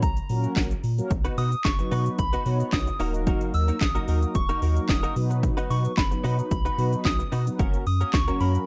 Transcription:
0.02 A#1 A#5, kick, closed hi-hat, shaker
0.17 closed hi-hat, shaker
0.29 A#2 F#3 A#3 C#4 F#4 A#4, open hi-hat, shaker
0.44 closed hi-hat, shaker
0.56 A#1, kick, snare, clap, closed hi-hat, shaker
0.71 closed hi-hat, shaker
0.84 A#2, open hi-hat, shaker
0.98 F#3 A#3 C#4 F#4 A#4, closed hi-hat, shaker
1.10 B1, muted clean electric guitar stroke, kick, closed hi-hat, shaker
1.25 B3 D#4 F#4 B4, closed hi-hat, shaker
1.37 B2 B3 D#4 F#4 B4 D#6, open hi-hat, shaker
1.52 muted clean electric guitar stroke, closed hi-hat, shaker
1.64 F#1 C#6, muted clean electric guitar stroke, kick, snare, clap, closed hi-hat, shaker
1.79 F#3 B3 D#4 F#4 B4, muted clean electric guitar stroke, closed hi-hat, shaker
1.91 B2 B3 D#4 F#4 B4, open hi-hat, shaker
2.06 muted clean electric guitar stroke, closed hi-hat, shaker
2.19 B1 B5, muted clean electric guitar stroke, kick, closed hi-hat, shaker
2.33 B3 D#4 F#4 B4, closed hi-hat, shaker
2.46 B2 F#3 B3 D#4 F#4 B4 C#5, open hi-hat, shaker
2.60 muted clean electric guitar stroke, closed hi-hat, shaker
2.73 B1 D#6, muted clean electric guitar stroke, kick, snare, clap, closed hi-hat, shaker
2.87 muted clean electric guitar stroke, closed hi-hat, shaker
3.00 D#1 F#3 A#3 D#4 F#4 A#4, open hi-hat, shaker
3.14 muted clean electric guitar stroke, closed hi-hat, shaker
3.27 A#3 D#4 F#4 A#4, kick, closed hi-hat, shaker
3.41 closed hi-hat, shaker
3.54 D#2 E6, muted clean electric guitar stroke, open hi-hat, shaker
3.68 A#3 D#4 F#4 A#4, closed hi-hat, shaker
3.81 A#1 D#6, muted clean electric guitar stroke, kick, snare, clap, closed hi-hat, shaker
3.95 F#3 A#3 D#4 F#4 A#4, closed hi-hat, shaker
4.07 D#2 A#3 D#4 F#4 A#4, open hi-hat, shaker
4.22 muted clean electric guitar stroke, closed hi-hat, shaker
4.35 D#1 C#6, muted clean electric guitar stroke, kick, closed hi-hat, shaker
4.49 A#3 D#4 F#4 A#4, closed hi-hat, shaker
4.62 D#2 F#3 A#3 D#4 F#4 A#4, open hi-hat, shaker
4.76 muted clean electric guitar stroke, closed hi-hat, shaker
4.89 D#1 D#6, muted clean electric guitar stroke, kick, snare, clap, closed hi-hat, shaker
5.03 A#3 D#4 F#4 A#4, closed hi-hat, shaker
5.16 B2 F#3 B3 D#4 F#4 B4, muted clean electric guitar stroke, open hi-hat, shaker
5.30 muted clean electric guitar stroke, closed hi-hat, shaker
5.43 muted clean electric guitar stroke, kick, closed hi-hat, shaker
5.57 B3 D#4 F#4 B4, closed hi-hat, shaker
5.70 B2 B3 D#4 F#4 B4 C#6, open hi-hat, shaker
5.84 muted clean electric guitar stroke, closed hi-hat, shaker
5.97 F#1 B5, muted clean electric guitar stroke, kick, snare, clap, closed hi-hat, shaker
6.11 F#3 B3 D#4 F#4 B4, muted clean electric guitar stroke, closed hi-hat, shaker
6.24 B2 B3 D#4 F#4 B4, open hi-hat, shaker
6.38 muted clean electric guitar stroke, closed hi-hat, shaker
6.51 B1 B5, muted clean electric guitar stroke, kick, closed hi-hat, shaker
6.65 B3 D#4 F#4 B4, closed hi-hat, shaker
6.78 B2 F#3 B3 D#4 F#4 B4, open hi-hat, shaker
6.92 muted clean electric guitar stroke, closed hi-hat, shaker
7.05 B1 D#6, muted clean electric guitar stroke, kick, snare, clap, closed hi-hat, shaker
7.19 muted clean electric guitar stroke, closed hi-hat, shaker
7.32 B2 B3 D#4 F#4 B4, open hi-hat, shaker
7.46 F#3 B3 D#4 F#4 B4, muted clean electric guitar stroke, closed hi-hat, shaker
7.59 F#1 A#3 C#4 F#4 A#4, kick, closed hi-hat, shaker
7.74 closed hi-hat, shaker
7.86 F#2 D#6, muted clean electric guitar stroke, open hi-hat, shaker
8.01 A#3 C#4 F#4 A#4, closed hi-hat, shaker
8.13 C#2 C#6, muted clean electric guitar stroke, kick, snare, clap, closed hi-hat, shaker
8.28 F#3 A#3 C#4 F#4 A#4, closed hi-hat, shaker
8.40 F#2 A#3 C#4 F#4 A#4 B5, open hi-hat, shaker
8.55 muted clean electric guitar stroke, closed hi-hat, shaker

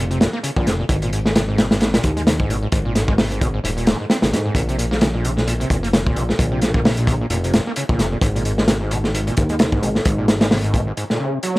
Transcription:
Already playing: F1
0.11 C3, closed hi-hat
0.21 A#2, snare, closed hi-hat
0.33 A#3
0.43 C#3, closed hi-hat
0.56 A#1 A#2, kick
0.66 F1 C#3, snare, closed hi-hat
0.79 A#2
0.89 G#1 G#2, kick, closed hi-hat
1.02 A#2, closed hi-hat
1.13 G#2, closed hi-hat
1.26 G#3, snare
1.36 C3, snare, closed hi-hat
1.49 G#2
1.58 C3, snare, closed hi-hat
1.71 G#2, snare, closed hi-hat
1.81 G#2, snare, closed hi-hat
1.94 A#2, snare, closed hi-hat
2.03 D#2 G#2, kick, closed hi-hat
2.17 G#3, closed hi-hat
2.27 C3, snare, closed hi-hat
2.40 G#2, kick
2.49 G#1 C3, closed hi-hat
2.63 G#2
2.72 G#1 G#2, kick, closed hi-hat
2.85 A#2
2.95 G#2, snare, closed hi-hat
3.08 G#3, kick
3.18 C3, snare, open hi-hat
3.31 G#2, closed hi-hat
3.41 C3, kick, closed hi-hat
3.54 G#2
3.64 D#1 G#2, closed hi-hat
3.77 A#2, closed hi-hat
3.87 G#2, snare, closed hi-hat
4.00 G#2
4.10 C4, snare, closed hi-hat
4.22 G#1 C3, snare, closed hi-hat
4.33 G#2, snare, closed hi-hat
4.46 G#2
4.55 A#1 A#2, kick, closed hi-hat
4.69 C3, closed hi-hat
4.78 A#2, closed hi-hat
4.91 A#3, snare
5.01 C#3, snare, closed hi-hat
5.14 A#2
5.24 C#3, closed hi-hat
5.37 A#2, snare
5.47 A#2, closed hi-hat
5.60 C3, closed hi-hat
5.70 F1 A#2, kick, closed hi-hat
5.83 A#3, closed hi-hat
5.93 C#3, snare, closed hi-hat
6.07 A#2, kick
6.16 A#1 C#3, closed hi-hat
6.29 A#2, snare
6.39 A#1 A#2, kick, closed hi-hat
6.52 C3
6.62 A#2, snare, closed hi-hat
6.74 A#3, kick
6.85 C#3, snare, open hi-hat
6.97 A#2, closed hi-hat
7.07 C#3, kick, closed hi-hat
7.21 A#2
7.30 F1 A#2, closed hi-hat
7.44 C3, closed hi-hat
7.54 A#2, snare, closed hi-hat
7.67 A#3
7.76 C#3, closed hi-hat
7.89 A#1 A#2, kick
7.99 F1 C#3, snare, closed hi-hat
8.12 A#2
8.21 G#1 G#2, kick, closed hi-hat
8.35 A#2, closed hi-hat
8.45 G#2, closed hi-hat
8.58 G#3, snare
8.68 C3, snare, closed hi-hat
8.81 G#2
8.91 C3, closed hi-hat
9.04 G#2, snare
9.14 G#2, closed hi-hat
9.27 A#2, closed hi-hat
9.37 D#2 G#2, kick, closed hi-hat
9.49 G#3, closed hi-hat
9.59 C3, snare, closed hi-hat
9.72 G#2, kick
9.82 G#1 C3, closed hi-hat
9.95 G#2, snare
10.05 G#1 G#2, kick, closed hi-hat
10.18 A#2
10.28 G#2, snare, closed hi-hat
10.41 G#3, snare, closed hi-hat
10.51 C3, snare, open hi-hat
10.64 G#2, closed hi-hat
10.74 C3, kick, closed hi-hat
10.87 G#2
10.97 G#2, closed hi-hat
11.10 A#2, snare
11.20 C#3
11.33 C3
11.43 F#3, closed hi-hat
11.56 snare

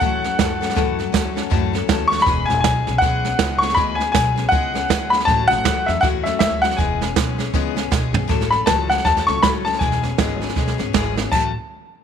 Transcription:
Already playing: F#5
0.00 E2 A2 E3 F#3 A3 C#4 A4, kick, snare
0.24 F#3 A3 C#4 A4, snare
0.38 F#2 F#3 A3 C#4 A4, kick, snare, hi-hat pedal
0.61 F#3 A3 C#4 A4, snare
0.70 snare
0.75 F#2 A2 E3 F#3 A3 C#4 A4, kick, snare
0.99 F#3 A3 C#4 A4, snare
1.12 E2 F#3 A3 C#4 A4, kick, snare, hi-hat pedal
1.35 F#3 A3 C#4 A4, snare
1.50 F#2 A2 E3 F#3 A3 C#4 A4, kick, snare
1.73 F#3 A3 C#4 A4, snare
1.88 D#2 F#3 A3 C#4 A4, kick, snare, hi-hat pedal
2.08 A4 C#6
2.12 F#3 A3 C#4, snare
2.19 B5, snare
2.26 E1 E3 G#3 B3 C#4 G#4, kick, snare
2.46 E1 G#4 G#5, snare
2.51 B3 C#4
2.61 B1 G#3 G#5, kick, snare, hi-hat pedal
2.65 B3 C#4 G#4
2.87 B1 B3 C#4 G#4, snare
2.98 B1 E3 F#5, kick, snare
3.03 G#3 B3 C#4 G#4
3.25 B3 C#4 G#4, snare
3.39 C#2 G#3 B3 C#4 G#4, kick, snare, hi-hat pedal
3.58 G#4 C#6, snare
3.64 B3 C#4
3.70 snare
3.75 D2 E3 G#3 B3 C#4 G#4 B5, kick, snare
3.95 G#4 G#5
4.00 B3 C#4, snare
4.12 B1 G#3 B3 C#4 G#4 G#5, kick, snare, hi-hat pedal
4.36 B3 C#4 G#4, snare
4.49 C#2 E3 G#3 B3 F#5, kick, snare
4.53 C#4 G#4
4.74 B3 C#4 G#4, snare
4.88 D2 G#3 B3 C#4 G#4, kick, snare, hi-hat pedal
5.10 C#4 G#4 B5, snare
5.15 B3
5.20 snare
5.25 A1 A2 E3 F#3 A3 C#4 F#4 A5, kick, snare
5.48 A1 A3 C#4 F#4 F#5, snare
5.52 F#3
5.64 E2 F#3 A3 C#4 F#4, kick, snare, hi-hat pedal
5.86 E2 F#3 A3 C#4 F#4 E5, snare
6.01 E2 A2 E3 F#3 A3 C#4 F#4 F#5, kick, snare
6.23 F#3 A3 C#4 F#4 E5, snare
6.39 D2 F#3 A3 C#4 E5, kick, snare, hi-hat pedal
6.62 A3 C#4 F#4 F#5, snare
6.66 F#3
6.71 snare
6.77 E1 E3 G#3 B3 C#4 G#4 G#5, kick, snare
7.01 B3 C#4 G#4, snare
7.16 B1 G#3 B3 C#4 G#4, kick, snare, hi-hat pedal
7.38 B3 C#4 G#4, snare
7.53 C#2 E3 G#3 B3 C#4 G#4, kick, snare
7.76 B3 C#4 G#4, snare
7.91 B1 G#3 B3 C#4 G#4, kick, snare, hi-hat pedal
8.13 B3 C#4 G#4, floor tom
8.28 A1 A2 E3 F#3 A3 C#4 A4, kick, snare
8.41 snare
8.50 F#3 A3 C#4 A4 B5, snare
8.66 C#2 A2 E3 F#3 A3 C#4 A4 A5, kick, snare, hi-hat pedal
8.89 F#3 A3 C#4 A4 F#5, snare
8.98 snare
9.05 E2 F#3 A3 C#4 A4 A5, kick, snare
9.17 snare
9.27 C#2 F#3 A3 C#4 A4 C#6, snare
9.43 C#2 A2 E3 F#3 A3 C#4 A4 B5, kick, snare, hi-hat pedal
9.65 F#3 A3 C#4 A4 A5, snare
9.73 snare
9.79 E1 E3 G#3 B3 C#4 G#4 G#5, kick, snare
9.92 snare
10.03 B3 C#4 G#4, snare
10.18 G#1 E3 G#3 B3 C#4 G#4, kick, snare, hi-hat pedal
10.41 B3 C#4 G#4, snare
10.49 snare
10.56 B1 G#3 B3 C#4 G#4, kick, snare
10.67 snare
10.78 G#1 B3 C#4 G#4, snare
10.93 G#1 E3 G#3 B3 C#4 G#4, kick, snare, hi-hat pedal
11.16 B3 C#4 G#4, snare
11.31 A1 A2 E3 F#3 A3 C#4 F#4 A5, kick, crash

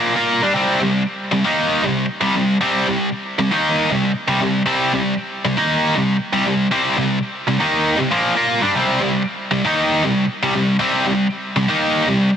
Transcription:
Already playing: A#2 F3 A#3
0.15 A#3 F4 A#4
0.42 G3 D4
0.53 C3 G3 C4
0.80 C3 G3
1.32 C3 G3
1.45 D#3 A#3 D#4
1.83 C3 G3
2.21 C3 G3
2.36 C3 G3
2.61 C3 G3 C4
2.87 C3 G3
3.39 C3 G3
3.52 D#3 A#3 D#4
3.91 C3 G3
4.28 C3 G3
4.40 C3 G3
4.66 C3 G3 C4
4.93 C3 G3
5.45 C3 G3
5.57 D#3 A#3 D#4
5.96 C3 G3
6.33 C3 G3
6.47 C3 G3
6.71 C3 G3 C4
6.97 C3 G3
7.48 C3 G3
7.60 D#3 A#3 D#4
7.98 C3 G3
8.11 A#2 F3 A#3
8.36 A#3 F4 A#4
8.62 G3 D4
8.75 C3 G3 C4
9.00 C3 G3
9.51 C3 G3
9.65 D#3 A#3 D#4
10.04 C3 G3
10.43 C3 G3
10.55 C3 G3
10.79 C3 G3 C4
11.05 C3 G3
11.56 C3 G3
11.68 D#3 A#3 D#4
12.07 C3 G3

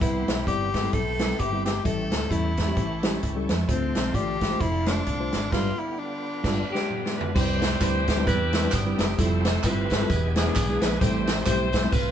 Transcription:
Already playing: G5 B5
0.00 C2 C3 E3 G3 B3 C4 E4 G4 B4 E5 C6, kick, closed hi-hat
0.28 B1, snare, closed hi-hat
0.46 G1 G3 C4 E4 G4 D5, kick, closed hi-hat
0.74 kick, snare, closed hi-hat
0.83 G3 C4 E4 A4
0.93 B1 A4, kick, closed hi-hat
1.19 G3 C4 E4 B4, snare, closed hi-hat
1.39 G1 G4, kick, closed hi-hat
1.52 G3 C4 E4 G4
1.66 G4, snare, closed hi-hat
1.84 A1 A2 E3 G3 A3 C#4 E4 G4 A4 A5 C#6, kick, closed hi-hat
2.12 D2, snare, closed hi-hat
2.31 E2 G3 C#4 E4 A4, kick, closed hi-hat
2.57 kick, snare, closed hi-hat
2.67 G3 C#4 E4 G4
2.76 A1, kick, closed hi-hat
3.03 G3 C#4 E4 G4, snare, closed hi-hat
3.23 C#2, kick, closed hi-hat
3.36 G3 C#4 E4 A4
3.49 F2, snare, closed hi-hat
3.68 D2 D3 A3 C4 D4 E4 F4 C5 D5 F5 C6, kick, closed hi-hat
3.74 F4
3.95 B1, snare, closed hi-hat
4.14 A1 A3 D4 F4 G4 D5, kick, closed hi-hat
4.41 kick, snare, closed hi-hat
4.50 A3 D4 F4 C5
4.60 F1 E4, kick, closed hi-hat
4.86 A3 D4 F4 C5, snare, closed hi-hat
5.06 C2, kick, closed hi-hat
5.19 A3 D4 F4 C5
5.33 G#1, snare, closed hi-hat
5.52 G1 G2 D3 G3 B3 D4 F4 B4 G5 B5, kick, snare, crash
5.79 E4
5.99 D4
6.43 G1 G3 D4 F4 B4, kick, snare, crash
6.70 B3 D4 G4
6.75 snare
6.90 mid tom
7.06 snare
7.16 B4
7.21 floor tom
7.35 C2 C3 D#3 G3 C4 D4 E4 G4 B4 C5, kick, crash, tambourine
7.41 E3
7.62 snare, closed hi-hat, tambourine
7.81 D2 G3 C4 D4 E4 G4 B4 C5, kick, clap, closed hi-hat, tambourine
8.07 kick, snare, closed hi-hat, tambourine
8.17 G3 C4 D4 E4 B4
8.27 E2 D4 E4 B4, kick, closed hi-hat, tambourine
8.53 snare, closed hi-hat, tambourine
8.62 G3 C4 D4 E4 B4
8.72 G1 B3 E4 G4, kick, clap, closed hi-hat, tambourine
8.85 G3 C4 D4 E4 B4
8.99 F#1, snare, closed hi-hat, tambourine
9.18 F1 F3 G3 A3 C4 E4 F4 G4 A4, kick, closed hi-hat, tambourine
9.45 snare, closed hi-hat, tambourine
9.63 G1 G3 C4 E4 F4 G4 B4, kick, clap, closed hi-hat, tambourine
9.90 kick, snare, closed hi-hat, tambourine
10.00 G3 C4 E4 F4 A4
10.09 E1 E3 G#3 B3 D4 G#4, kick, closed hi-hat, tambourine
10.36 B3 D4 G#4, snare, closed hi-hat, tambourine
10.46 G#3 B3 D4 E4 B4
10.55 B1, kick, clap, closed hi-hat, tambourine
10.69 G#3 B3 D4 E4 G#4
10.81 A#1 B4, snare, closed hi-hat, tambourine
11.00 A1 A2 E3 G3 A3 C4 E4 G4 A4 C5, kick, closed hi-hat, tambourine
11.27 snare, closed hi-hat, tambourine
11.46 B1 G3 A3 C4 E4 G4 C5, kick, clap, closed hi-hat, tambourine
11.72 kick, snare, closed hi-hat, tambourine
11.83 G3 A3 C4 E4 C5
11.92 C2 C3 A3 C4 F4 B4, kick, closed hi-hat, tambourine

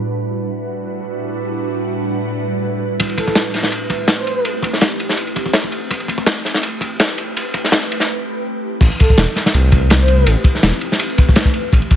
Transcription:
0.09 A2 G3 D4 E4 F#4 B4
3.00 kick, ride
3.09 ride
3.18 A4, kick, ride
3.27 A3 C4 E4 G4 B4, kick
3.35 snare, ride
3.54 snare, ride
3.63 snare
3.72 ride
3.90 kick, ride
4.08 snare, ride
4.19 C5
4.27 ride
4.45 ride
4.62 kick, ride
4.73 snare
4.81 snare, ride
4.91 ride
5.00 ride
5.09 snare
5.17 ride
5.27 ride
5.36 kick, ride
5.46 kick
5.53 snare, ride
5.64 kick
5.72 ride
5.91 kick, ride
6.00 ride
6.08 kick, ride
6.18 A3 C4 E4 G4 B4, kick
6.26 snare, ride
6.45 snare, ride
6.54 snare
6.63 ride
6.81 kick, ride
7.00 snare, ride
7.18 ride
7.37 ride
7.54 kick, ride
7.64 snare
7.72 snare, ride
7.83 ride
7.92 ride
8.00 snare
8.81 A1, kick, crash, ride
8.91 ride
9.00 A4, kick, ride
9.09 A3 C4 E4 G4 B4, kick
9.18 E1, snare, ride
9.36 snare, ride
9.46 snare
9.54 C2, ride
9.72 kick, ride
9.90 snare, ride
10.00 C5
10.08 ride
10.26 A1, ride
10.44 kick, ride
10.55 snare
10.63 E1, snare, ride
10.73 ride
10.81 ride
10.92 snare
10.99 ride
11.10 ride
11.18 kick, ride
11.29 kick
11.36 snare, ride
11.45 kick
11.54 ride
11.73 A1, kick, ride
11.82 ride
11.90 kick, ride

